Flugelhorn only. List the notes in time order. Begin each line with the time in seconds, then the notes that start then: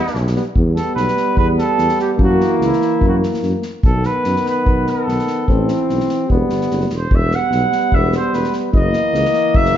Already playing: B3
0.76 A4
0.95 B4
1.38 B4
1.59 A4
2.01 G4
2.23 F#4
2.57 F#4
2.65 E4
3.08 F#4
3.85 A4
4.06 B4
4.48 B4
4.90 A4
6.96 C5
7.15 E5
7.35 F#5
7.94 E5
8.16 C5
8.34 B4
8.75 D#5
9.56 E5